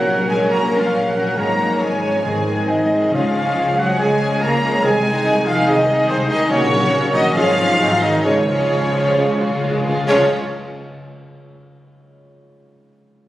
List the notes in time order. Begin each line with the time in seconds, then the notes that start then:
Already playing: A#2 F#3 A#3 C#4 F#4 A#4 F#5
0.08 A#1 C#5
0.18 A#4
0.28 F#3 G#3 C#4 G#4 A#4 C#5 G#5
0.40 C#6
0.49 A#1 F#3 A#3 C#4 A#4 C#5 A#5
0.61 C#6
0.71 F#3 C#4 A#4 C#5
0.78 F3 F4 F5
0.82 A#4
0.92 A#1 C#4
1.04 F#3 A#3 F#4 F#5
1.08 F#5
1.14 F#3 C#4 A#4
1.25 A#3
1.35 G#1 G#2 F3 G#3 A#3 C#4 G#4 A#4 C#5 A#5
1.47 G#3
1.58 F3 G#3 C#4 C#5
1.69 C#4
1.79 G#1 G#3 G#4 C#5 G#5
1.91 F4
2.02 F3 G#3 C#4 C#5
2.13 C#6
2.23 G#1 G#2 D#3 G#3 C4 G#4
2.35 D#3
2.45 D#3 G#3 C4 G#4
2.57 D#4
2.67 G#1 D#3 D#4 C5 D#5
2.80 G#4
2.90 D#3 G#3 C4 G#4 D#5
3.01 C6
3.11 C#2 C#3 F3 G#3 C#4 F4 G#4 F5
3.23 G#3
3.33 F3 G#3 C#4 G#4
3.45 G#4
3.55 C#2 C#4
3.66 C#5
3.76 F3 F#3 G#3 C#4 F#4 G#4 F#5 G#5
3.88 C#5
3.97 C#2 C#3 G#3 C#4 G#4 G#5
4.09 C#5
4.19 F3 G#3 C#4 G#4 G#5
4.30 C#5
4.40 C#2 A#3 G#4 A#4 A#5
4.51 C#4
4.62 F3 G#3 C#4 G#4
4.73 C#4
4.82 C2 C3 D#3 G#3 C4 G#4 G#5
4.94 C4
5.03 D#3 G#3 D#4 G#4
5.15 D#4
5.25 C2 G#4
5.36 D#4
5.45 D#3 F3 G#3 D#4 F4 G#4 D#5 F5
5.57 G#5
5.66 C2 D#3 G#3 C4 D#4 G#4 D#5
5.78 G#5
5.87 D#3 G#3 D#4 G#4 D#5
5.99 G#4
6.08 C2 C3 C4 D#4 C5
6.20 G#3
6.28 D#3 G#3 C4 D#4 G#4 D#5
6.41 G#3
6.50 A#1 A#2 C#3 F#3 A#3 C#4 F#4 C#5
6.62 A#3
6.72 F#3 A#3 C#4 F#4
6.83 F#4
6.92 A#1 A#4
7.04 F#4
7.13 D#3 F#3 A#3 C#4 D#4 F#4 D#5 F#5
7.26 A#5
7.34 G#1 G#2 F3 G#3 C#4 F4 G#4 F5
7.47 F3
7.58 F3 G#3 C#4 G#4
7.69 F4
7.78 G#1 G#2 F#3 G#3 C4 D#4 G#4
7.91 D#3
8.01 D#3 F#3 G#3 C4 D#4 G#4 D#5
8.13 F#4
8.24 C#2 C#3 F3 G#3 C#4 G#4 C#5
8.31 C#3
8.36 C#3 C#4
8.46 C#3 F3 G#3 C#4 F4 G#4
8.54 C#3
8.59 C#3 F4
8.69 C#2 C#3 F3 C#5
8.77 C#3 G#4
8.85 C#3
8.92 C#3 F4 G#4 F5
9.00 C#3 C#6
9.08 C#3
9.15 C#2 C#3 F3 G#3 C#4 G#4 F5
9.22 C#3
9.27 C#6
9.31 C#3
9.38 C#3 F#3 F4 G#4 F5
9.46 C#3 G#4
9.54 C#3
9.61 C#2 C#3 G#3 F4
9.70 C#3 G#3
9.78 C#3
9.85 C#3 C#4 F4 G#4
9.93 C#3 G#3
10.03 C#3 G#3 C#4 G#4
10.08 C#2 C#3 F3 G#3 C#4 F4 C#5, concert bass drum, crash
10.12 C#5 F5